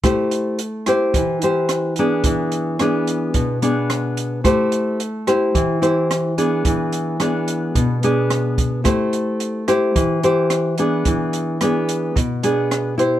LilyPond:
<<
  \new Staff \with { instrumentName = "Nylon-string guitar" } { \time 4/4 \key a \minor \tempo 4 = 109 << { <e' g' c''>4 r8 <e' g' c''>4 <e' g' c''>4 <b d' gis'>8~ | <b d' gis'>4 <b d' gis'>4. <b d' gis'>4. | <e' g' c''>4 r8 <e' g' c''>4 <e' g' c''>4 <b d' gis'>8~ | <b d' gis'>4 <b d' gis'>4. <b d' gis'>4. |
<e' g' c''>4. <e' g' c''>4 <e' g' c''>4 <b d' gis'>8~ | <b d' gis'>4 <b d' gis'>4 r8 <b d' gis'>4 <e' g' c''>8 | } \\ { a2 e2 | e2 b,2 | a2 e2 | e2 b,2 |
a2 e2 | e2 b,2 | } >> }
  \new DrumStaff \with { instrumentName = "Drums" } \drummode { \time 4/4 <hh bd ss>8 hh8 hh8 <hh ss>8 <hh bd>8 hh8 <hh ss>8 hh8 | <hh bd>8 hh8 <hh ss>8 hh8 <hh bd>8 hh8 <hh ss>8 hh8 | <hh bd ss>8 hh8 hh8 <hh ss>8 <hh bd>8 hh8 <hh ss>8 hh8 | <hh bd>8 hh8 <hh ss>8 hh8 <hh bd>8 hh8 <hh ss>8 <hh bd>8 |
<hh bd ss>8 hh8 hh8 <hh ss>8 <hh bd>8 hh8 <hh ss>8 hh8 | <hh bd>8 hh8 <hh ss>8 hh8 <hh bd>8 hh8 <hh ss>8 hh8 | }
>>